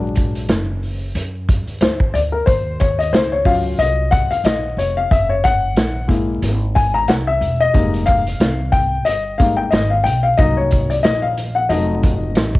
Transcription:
Already playing: upright bass A#1, upright piano F#3 G#3 D4
0.15 kick, closed hi-hat
0.35 closed hi-hat
0.49 upright bass F#1, snare, closed hi-hat
0.83 open hi-hat
1.15 upright bass F#2, closed hi-hat
1.49 kick, closed hi-hat
1.67 muted upright bass stroke, closed hi-hat
1.81 upright bass D2, upright piano C5, snare, closed hi-hat
2.00 kick
2.14 upright bass D2, upright piano D5, closed hi-hat
2.32 upright piano A#4
2.46 upright bass D#2, upright piano C5, kick, closed hi-hat
2.80 upright piano C#5, kick, closed hi-hat
2.99 upright piano D#5, closed hi-hat
3.13 upright bass C#2, upright piano C5, snare, closed hi-hat
3.32 upright piano C#5
3.45 upright piano F#3 C#4 F4 F5, kick, open hi-hat
3.79 upright bass C2, upright piano D#5, closed hi-hat
4.11 upright piano F#5, kick, closed hi-hat
4.31 upright piano F5, muted upright bass stroke, closed hi-hat
4.44 upright bass A#1, upright piano D#5, snare, closed hi-hat
4.77 upright bass F1, upright piano C#5, closed hi-hat
4.97 upright piano F5
5.11 upright bass F#1, upright piano E5, kick, closed hi-hat
5.29 upright piano C#5
5.44 upright piano F#5, kick, closed hi-hat
5.76 upright bass A#1, snare, closed hi-hat
6.08 upright piano G#3 A#3 E4, kick, closed hi-hat
6.42 upright bass G#1, closed hi-hat
6.75 upright piano G#5, kick, closed hi-hat
6.94 upright piano A#5
7.08 upright bass C2, upright piano F#5, snare, closed hi-hat
7.27 upright piano E5
7.41 upright bass E1, closed hi-hat
7.61 upright piano D#5
7.73 upright bass F1, upright piano G3 G#3 A#3 D#4, kick, closed hi-hat
7.94 closed hi-hat
8.06 upright piano F5, kick, closed hi-hat
8.27 closed hi-hat
8.40 upright bass C2, snare, closed hi-hat
8.72 upright piano G5, kick, closed hi-hat
9.05 upright bass G1, upright piano D#5, closed hi-hat
9.38 upright piano G3 G#3 A#3 D#4 F5, kick, closed hi-hat
9.57 upright piano G5
9.71 upright bass G#1, upright piano D#5, snare, closed hi-hat
9.90 upright piano F5
10.04 upright bass B1, upright piano G5, closed hi-hat
10.23 upright piano F5
10.37 upright bass C2, upright piano F#3 A#3 D#4 D#5, kick, closed hi-hat
10.57 upright piano C#5
10.71 kick, closed hi-hat
10.90 upright piano D5, closed hi-hat
11.03 upright bass A#1, upright piano D#5, snare, closed hi-hat
11.22 upright piano F5
11.38 closed hi-hat
11.55 upright piano F#5
11.69 upright bass F1, upright piano F#3 A3 D#4 D#5, closed hi-hat
12.03 kick, closed hi-hat
12.35 upright bass A1, snare, closed hi-hat
12.55 kick

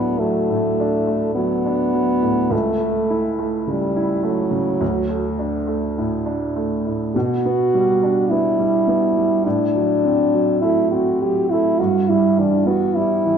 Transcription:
Already playing: grand piano D2 A2 F#3 A3 D4, french horn B3
0.19 grand piano F#3, french horn A3
0.50 grand piano A2
0.80 grand piano D4
1.07 grand piano A3
1.35 grand piano F#3, french horn B3
1.66 grand piano D4
1.94 grand piano F#3
2.22 grand piano A2
2.50 grand piano C#2, french horn A3
2.80 grand piano A3
3.10 grand piano E4
3.39 grand piano A3
3.67 grand piano C#3, french horn G3
3.96 grand piano E4
4.23 french horn F#3, grand piano A3
4.51 grand piano C#3
4.81 grand piano D2
5.09 grand piano A3
5.39 grand piano D4
5.67 grand piano A3
5.98 grand piano A2
6.26 grand piano D4
6.56 grand piano A3
6.87 grand piano A2
7.16 grand piano B2, french horn F#4
7.45 grand piano B3
7.74 grand piano G3
8.03 grand piano D4
8.30 grand piano B3, french horn E4
8.59 grand piano G3
8.88 grand piano B3
9.18 grand piano G3
9.45 grand piano A2, french horn D4
9.75 grand piano F#3
10.04 grand piano C4
10.34 grand piano F#3
10.61 grand piano A3, french horn E4
10.91 grand piano C4, french horn F#4
11.21 grand piano F#3, french horn G4
11.50 grand piano A3, french horn E4
11.79 grand piano G2, french horn F#4
12.09 grand piano G3, french horn E4
12.38 grand piano E3, french horn D4
12.66 grand piano B3, french horn F#4
12.96 grand piano G3, french horn E4
13.25 grand piano E3

